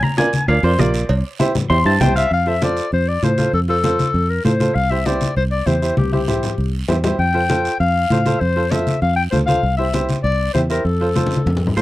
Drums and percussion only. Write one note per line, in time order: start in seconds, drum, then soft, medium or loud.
0.03 high conga medium
0.18 high conga medium
0.18 short guiro medium
0.33 high conga medium
0.33 short guiro medium
0.49 cowbell medium
0.49 high conga soft
0.49 long guiro medium
0.79 high conga medium
0.79 low timbale medium
0.79 short guiro medium
0.94 short guiro medium
1.09 cowbell loud
1.09 high conga soft
1.09 long guiro medium
1.40 high conga medium
1.40 short guiro medium
1.55 high conga medium
1.55 low conga medium
1.55 short guiro medium
1.70 cowbell medium
1.70 high conga soft
1.70 long guiro medium
2.01 high conga medium
2.01 low conga medium
2.01 low timbale medium
2.01 short guiro medium
2.16 short guiro medium
2.31 long guiro medium
2.47 high conga soft
2.62 high conga medium
2.62 short guiro medium
2.77 short guiro medium
2.92 high conga soft
2.92 long guiro medium
3.23 high conga medium
3.23 short guiro medium
3.38 high conga medium
3.38 short guiro medium
3.53 long guiro medium
3.69 high conga soft
3.84 high conga medium
3.84 short guiro medium
3.99 high conga medium
3.99 short guiro medium
4.14 high conga soft
4.14 long guiro medium
4.45 high conga medium
4.45 short guiro medium
4.60 high conga medium
4.60 short guiro medium
4.76 long guiro medium
4.91 high conga soft
5.06 high conga medium
5.06 short guiro medium
5.21 high conga medium
5.21 short guiro medium
5.36 high conga soft
5.36 long guiro medium
5.67 high conga medium
5.67 short guiro medium
5.82 short guiro medium
5.97 high conga medium
5.97 long guiro medium
6.13 high conga medium
6.28 low conga medium
6.28 short guiro medium
6.43 low conga medium
6.43 short guiro medium
6.58 long guiro medium
6.88 low conga medium
6.88 short guiro medium
7.04 low conga medium
7.04 short guiro medium
7.19 long guiro medium
7.35 high conga soft
7.49 high conga medium
7.49 short guiro medium
7.65 short guiro medium
7.80 high conga soft
7.80 long guiro medium
8.10 high conga medium
8.10 short guiro medium
8.26 high conga medium
8.26 short guiro medium
8.41 long guiro medium
8.56 high conga soft
8.72 high conga medium
8.72 short guiro medium
8.87 high conga medium
8.87 short guiro medium
9.02 high conga soft
9.02 long guiro medium
9.33 high conga medium
9.33 short guiro medium
9.48 high conga medium
9.48 short guiro medium
9.64 long guiro medium
9.79 high conga soft
9.94 high conga medium
9.94 short guiro medium
10.09 high conga medium
10.09 short guiro medium
10.24 high conga soft
10.24 long guiro medium
10.55 high conga medium
10.55 short guiro medium
10.70 short guiro medium
10.85 long guiro medium
11.01 high conga soft
11.16 high conga medium
11.16 short guiro medium
11.26 high conga medium
11.31 short guiro medium
11.36 high conga medium
11.46 high conga medium
11.46 long guiro medium
11.57 low conga medium
11.67 low conga medium
11.77 short guiro medium